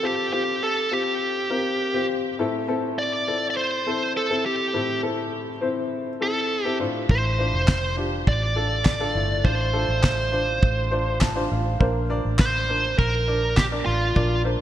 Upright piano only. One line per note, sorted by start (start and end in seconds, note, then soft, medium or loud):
0.00 0.03 C4 medium
0.00 0.26 C4 medium
0.00 0.03 F4 medium
0.00 0.26 F4 medium
0.00 0.32 G4 medium
0.00 0.03 A4 medium
0.00 0.27 A4 medium
0.32 0.79 C4 medium
0.32 0.79 F4 medium
0.32 0.79 G4 medium
0.91 1.38 C4 medium
0.91 1.38 F4 soft
0.91 1.38 G4 medium
1.50 1.85 C4 medium
1.50 1.85 F4 medium
1.50 1.85 A#4 medium
1.94 2.29 C4 medium
1.94 2.29 F4 medium
1.94 2.29 G4 medium
2.39 3.23 A2 medium
2.39 2.62 C4 medium
2.39 2.62 E4 medium
2.39 2.62 A4 medium
2.68 3.15 C4 medium
2.68 3.15 E4 medium
2.68 3.15 A4 medium
3.27 3.74 C4 soft
3.27 3.74 E4 soft
3.27 3.74 A4 medium
3.87 4.21 C4 medium
3.87 4.21 E4 medium
3.87 4.22 A4 medium
4.30 4.65 C4 medium
4.30 4.65 E4 medium
4.30 4.65 A4 medium
4.73 5.58 A2 medium
4.73 4.97 C4 medium
4.73 4.97 E4 medium
4.73 4.97 A4 medium
5.03 5.50 C4 medium
5.03 5.50 E4 medium
5.03 5.50 A4 medium
5.61 6.09 C4 medium
5.61 6.09 E4 medium
5.61 6.09 C5 medium
6.20 6.56 C4 medium
6.20 6.56 E4 soft
6.20 6.56 A4 medium
6.65 6.80 C4 medium
6.65 6.80 E4 medium
6.65 6.80 A4 medium
6.80 7.64 A2 medium
6.80 7.27 D4 medium
6.80 7.27 F4 medium
6.80 7.27 C5 medium
7.38 7.86 D4 medium
7.38 7.86 F4 medium
7.38 7.86 C5 medium
7.97 8.44 D4 medium
7.97 8.45 F4 medium
7.97 8.45 G4 medium
8.56 8.92 D4 medium
8.56 8.92 F4 medium
8.56 8.92 A4 medium
9.00 9.36 D4 medium
9.00 9.36 F4 medium
9.00 9.36 A4 medium
9.15 10.00 A2 medium
9.44 9.68 D4 medium
9.44 9.68 F4 medium
9.44 9.68 C5 medium
9.73 10.21 D4 medium
9.73 10.21 F4 medium
9.73 10.21 A4 medium
10.32 10.80 D4 medium
10.32 10.80 F4 medium
10.32 10.80 C5 medium
10.91 11.27 D4 medium
10.91 11.27 F4 medium
10.91 11.27 C5 medium
11.21 11.49 A5 medium
11.36 11.71 D4 medium
11.36 11.71 F4 medium
11.36 11.72 C5 medium
11.51 11.79 F5 medium
11.80 12.65 A#3 medium
11.80 12.04 D4 medium
11.80 12.04 A#4 medium
11.80 12.04 C5 medium
12.10 12.57 D4 medium
12.10 12.57 A#4 medium
12.10 12.57 D5 medium
12.69 13.16 D4 medium
12.69 13.16 A#4 soft
12.69 13.16 C5 medium
13.27 13.63 D4 medium
13.27 13.63 A#4 soft
13.27 13.63 D5 medium
13.71 14.07 D4 medium
13.71 14.07 A#4 medium
13.71 14.07 D5 medium
14.15 14.61 A#2 medium
14.15 14.39 D4 medium
14.15 14.39 A#4 medium
14.15 14.39 D5 medium
14.44 14.61 D4 medium
14.44 14.61 A#4 medium
14.44 14.61 C5 medium